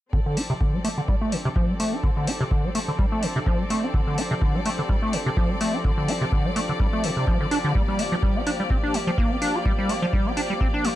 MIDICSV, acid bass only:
0, 0, Header, 1, 2, 480
1, 0, Start_track
1, 0, Key_signature, -1, "minor"
1, 0, Tempo, 476190
1, 133, Time_signature, 4, 2, 24, 8
1, 11042, End_track
2, 0, Start_track
2, 0, Title_t, "Acid bass"
2, 0, Program_c, 0, 38
2, 133, Note_on_c, 0, 50, 75
2, 205, Note_off_c, 0, 50, 0
2, 264, Note_on_c, 0, 50, 71
2, 372, Note_on_c, 0, 65, 93
2, 387, Note_off_c, 0, 50, 0
2, 416, Note_off_c, 0, 65, 0
2, 503, Note_on_c, 0, 48, 97
2, 539, Note_off_c, 0, 48, 0
2, 613, Note_on_c, 0, 50, 74
2, 745, Note_on_c, 0, 55, 97
2, 760, Note_off_c, 0, 50, 0
2, 804, Note_off_c, 0, 55, 0
2, 852, Note_on_c, 0, 57, 76
2, 896, Note_off_c, 0, 57, 0
2, 985, Note_on_c, 0, 50, 72
2, 1021, Note_off_c, 0, 50, 0
2, 1093, Note_on_c, 0, 55, 75
2, 1165, Note_off_c, 0, 55, 0
2, 1225, Note_on_c, 0, 57, 74
2, 1333, Note_on_c, 0, 50, 71
2, 1348, Note_off_c, 0, 57, 0
2, 1376, Note_off_c, 0, 50, 0
2, 1465, Note_on_c, 0, 48, 102
2, 1500, Note_off_c, 0, 48, 0
2, 1573, Note_on_c, 0, 53, 92
2, 1705, Note_on_c, 0, 55, 86
2, 1720, Note_off_c, 0, 53, 0
2, 1764, Note_off_c, 0, 55, 0
2, 1812, Note_on_c, 0, 57, 70
2, 1945, Note_on_c, 0, 62, 79
2, 1960, Note_off_c, 0, 57, 0
2, 1980, Note_off_c, 0, 62, 0
2, 2052, Note_on_c, 0, 50, 78
2, 2125, Note_off_c, 0, 50, 0
2, 2185, Note_on_c, 0, 50, 68
2, 2292, Note_on_c, 0, 65, 97
2, 2307, Note_off_c, 0, 50, 0
2, 2336, Note_off_c, 0, 65, 0
2, 2425, Note_on_c, 0, 48, 93
2, 2460, Note_off_c, 0, 48, 0
2, 2533, Note_on_c, 0, 50, 77
2, 2665, Note_on_c, 0, 55, 95
2, 2681, Note_off_c, 0, 50, 0
2, 2724, Note_off_c, 0, 55, 0
2, 2772, Note_on_c, 0, 57, 70
2, 2816, Note_off_c, 0, 57, 0
2, 2905, Note_on_c, 0, 50, 71
2, 2940, Note_off_c, 0, 50, 0
2, 3013, Note_on_c, 0, 55, 76
2, 3085, Note_off_c, 0, 55, 0
2, 3146, Note_on_c, 0, 57, 76
2, 3254, Note_on_c, 0, 50, 68
2, 3269, Note_off_c, 0, 57, 0
2, 3297, Note_off_c, 0, 50, 0
2, 3387, Note_on_c, 0, 48, 95
2, 3421, Note_off_c, 0, 48, 0
2, 3494, Note_on_c, 0, 53, 97
2, 3626, Note_on_c, 0, 55, 86
2, 3641, Note_off_c, 0, 53, 0
2, 3684, Note_off_c, 0, 55, 0
2, 3733, Note_on_c, 0, 57, 74
2, 3865, Note_on_c, 0, 62, 75
2, 3880, Note_off_c, 0, 57, 0
2, 3901, Note_off_c, 0, 62, 0
2, 3973, Note_on_c, 0, 50, 78
2, 4045, Note_off_c, 0, 50, 0
2, 4105, Note_on_c, 0, 50, 76
2, 4213, Note_on_c, 0, 65, 98
2, 4228, Note_off_c, 0, 50, 0
2, 4256, Note_off_c, 0, 65, 0
2, 4344, Note_on_c, 0, 48, 97
2, 4380, Note_off_c, 0, 48, 0
2, 4452, Note_on_c, 0, 50, 81
2, 4586, Note_on_c, 0, 55, 97
2, 4601, Note_off_c, 0, 50, 0
2, 4645, Note_off_c, 0, 55, 0
2, 4694, Note_on_c, 0, 57, 72
2, 4737, Note_off_c, 0, 57, 0
2, 4826, Note_on_c, 0, 50, 73
2, 4861, Note_off_c, 0, 50, 0
2, 4933, Note_on_c, 0, 55, 78
2, 5005, Note_off_c, 0, 55, 0
2, 5065, Note_on_c, 0, 57, 73
2, 5173, Note_on_c, 0, 50, 70
2, 5188, Note_off_c, 0, 57, 0
2, 5216, Note_off_c, 0, 50, 0
2, 5305, Note_on_c, 0, 48, 97
2, 5341, Note_off_c, 0, 48, 0
2, 5413, Note_on_c, 0, 53, 97
2, 5544, Note_on_c, 0, 55, 90
2, 5559, Note_off_c, 0, 53, 0
2, 5604, Note_off_c, 0, 55, 0
2, 5652, Note_on_c, 0, 57, 74
2, 5784, Note_on_c, 0, 62, 79
2, 5800, Note_off_c, 0, 57, 0
2, 5820, Note_off_c, 0, 62, 0
2, 5892, Note_on_c, 0, 50, 77
2, 5965, Note_off_c, 0, 50, 0
2, 6025, Note_on_c, 0, 50, 75
2, 6131, Note_on_c, 0, 65, 97
2, 6146, Note_off_c, 0, 50, 0
2, 6176, Note_off_c, 0, 65, 0
2, 6264, Note_on_c, 0, 48, 100
2, 6300, Note_off_c, 0, 48, 0
2, 6372, Note_on_c, 0, 50, 73
2, 6504, Note_on_c, 0, 55, 94
2, 6519, Note_off_c, 0, 50, 0
2, 6564, Note_off_c, 0, 55, 0
2, 6613, Note_on_c, 0, 57, 70
2, 6656, Note_off_c, 0, 57, 0
2, 6746, Note_on_c, 0, 50, 71
2, 6781, Note_off_c, 0, 50, 0
2, 6854, Note_on_c, 0, 55, 77
2, 6926, Note_off_c, 0, 55, 0
2, 6986, Note_on_c, 0, 57, 75
2, 7093, Note_on_c, 0, 50, 72
2, 7108, Note_off_c, 0, 57, 0
2, 7165, Note_off_c, 0, 50, 0
2, 7226, Note_on_c, 0, 48, 76
2, 7314, Note_off_c, 0, 48, 0
2, 7333, Note_on_c, 0, 53, 97
2, 7442, Note_off_c, 0, 53, 0
2, 7466, Note_on_c, 0, 50, 68
2, 7525, Note_off_c, 0, 50, 0
2, 7574, Note_on_c, 0, 62, 101
2, 7646, Note_off_c, 0, 62, 0
2, 7706, Note_on_c, 0, 50, 103
2, 7794, Note_off_c, 0, 50, 0
2, 7815, Note_on_c, 0, 55, 79
2, 7886, Note_off_c, 0, 55, 0
2, 7947, Note_on_c, 0, 55, 72
2, 8055, Note_on_c, 0, 58, 101
2, 8070, Note_off_c, 0, 55, 0
2, 8097, Note_off_c, 0, 58, 0
2, 8186, Note_on_c, 0, 53, 97
2, 8221, Note_off_c, 0, 53, 0
2, 8294, Note_on_c, 0, 55, 81
2, 8427, Note_on_c, 0, 60, 96
2, 8442, Note_off_c, 0, 55, 0
2, 8485, Note_off_c, 0, 60, 0
2, 8534, Note_on_c, 0, 62, 77
2, 8577, Note_off_c, 0, 62, 0
2, 8667, Note_on_c, 0, 55, 76
2, 8701, Note_off_c, 0, 55, 0
2, 8774, Note_on_c, 0, 60, 77
2, 8846, Note_off_c, 0, 60, 0
2, 8906, Note_on_c, 0, 62, 74
2, 9013, Note_on_c, 0, 55, 72
2, 9028, Note_off_c, 0, 62, 0
2, 9057, Note_off_c, 0, 55, 0
2, 9145, Note_on_c, 0, 53, 100
2, 9180, Note_off_c, 0, 53, 0
2, 9253, Note_on_c, 0, 58, 91
2, 9386, Note_on_c, 0, 60, 91
2, 9401, Note_off_c, 0, 58, 0
2, 9444, Note_off_c, 0, 60, 0
2, 9492, Note_on_c, 0, 62, 73
2, 9625, Note_on_c, 0, 67, 77
2, 9640, Note_off_c, 0, 62, 0
2, 9661, Note_off_c, 0, 67, 0
2, 9733, Note_on_c, 0, 55, 80
2, 9805, Note_off_c, 0, 55, 0
2, 9864, Note_on_c, 0, 55, 69
2, 9972, Note_on_c, 0, 58, 96
2, 9987, Note_off_c, 0, 55, 0
2, 10016, Note_off_c, 0, 58, 0
2, 10104, Note_on_c, 0, 53, 100
2, 10140, Note_off_c, 0, 53, 0
2, 10213, Note_on_c, 0, 55, 80
2, 10344, Note_on_c, 0, 60, 96
2, 10360, Note_off_c, 0, 55, 0
2, 10404, Note_off_c, 0, 60, 0
2, 10452, Note_on_c, 0, 62, 71
2, 10496, Note_off_c, 0, 62, 0
2, 10584, Note_on_c, 0, 55, 72
2, 10620, Note_off_c, 0, 55, 0
2, 10692, Note_on_c, 0, 60, 81
2, 10765, Note_off_c, 0, 60, 0
2, 10825, Note_on_c, 0, 62, 75
2, 10931, Note_on_c, 0, 55, 71
2, 10946, Note_off_c, 0, 62, 0
2, 10976, Note_off_c, 0, 55, 0
2, 11042, End_track
0, 0, End_of_file